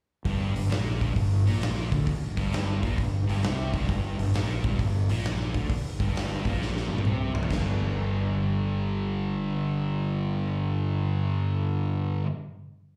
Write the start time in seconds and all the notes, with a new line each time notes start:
0.25 G1 G2, kick, open hi-hat
0.56 G1 G2, open hi-hat
0.70 A#1 A#2, snare, open hi-hat
1.00 G1 G2, kick, open hi-hat
1.15 G1 G2, kick, open hi-hat
1.46 A#1 A#2, open hi-hat
1.62 snare, open hi-hat
1.91 D2 D3, kick, open hi-hat
2.07 muted fingered electric bass stroke, muted distorted electric guitar stroke, kick, open hi-hat
2.37 G1 G2, kick, open hi-hat
2.53 snare, open hi-hat
2.81 A#1 A#2, kick, open hi-hat
2.97 G1 G2, kick, open hi-hat
3.27 G1 G2, open hi-hat
3.42 C2 C3, snare, open hi-hat
3.73 G1 G2, kick, open hi-hat
3.88 G1 G2, kick, open hi-hat
4.18 G1 G2, open hi-hat
4.34 A#1 A#2, snare, open hi-hat
4.64 G1 G2, kick, open hi-hat
4.79 G1 G2, kick, open hi-hat
5.09 A#1 A#2, open hi-hat
5.24 snare, open hi-hat
5.54 D2 D3, kick, open hi-hat
5.68 muted distorted electric guitar stroke, muted fingered electric bass stroke, kick, open hi-hat
6.00 G1 G2, kick, open hi-hat
6.16 snare, open hi-hat
6.44 A#1 A#2, kick, open hi-hat
6.62 snare
6.77 snare
6.88 G1 G2
6.98 high tom
7.03 C2 C3, mid tom
7.34 A#1 A#2, floor tom
7.43 floor tom
7.49 G1 G2 D3 G3, kick, snare, china